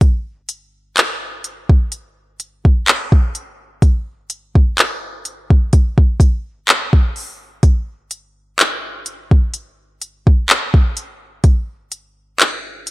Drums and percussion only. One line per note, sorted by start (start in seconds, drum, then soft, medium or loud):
0.01 kick loud
0.01 closed hi-hat medium
0.49 closed hi-hat medium
0.97 clap loud
0.97 closed hi-hat medium
1.44 closed hi-hat medium
1.69 kick medium
1.92 closed hi-hat medium
2.40 closed hi-hat medium
2.65 kick medium
2.88 clap loud
2.88 closed hi-hat medium
3.12 kick medium
3.35 closed hi-hat medium
3.82 kick loud
3.82 closed hi-hat medium
4.30 closed hi-hat medium
4.55 kick medium
4.78 clap loud
4.78 closed hi-hat medium
5.25 closed hi-hat medium
5.50 kick medium
5.73 kick medium
5.73 closed hi-hat medium
5.98 kick medium
6.20 kick loud
6.20 closed hi-hat medium
6.68 clap loud
6.68 closed hi-hat medium
6.93 kick medium
7.16 open hi-hat medium
7.63 kick loud
7.63 closed hi-hat medium
8.11 closed hi-hat medium
8.59 clap loud
8.59 closed hi-hat medium
9.06 closed hi-hat medium
9.31 kick medium
9.54 closed hi-hat medium
10.02 closed hi-hat medium
10.27 kick medium
10.49 clap loud
10.49 closed hi-hat medium
10.74 kick medium
10.97 closed hi-hat medium
11.44 kick loud
11.44 closed hi-hat medium
11.92 closed hi-hat medium
12.40 clap loud
12.40 closed hi-hat medium
12.87 closed hi-hat medium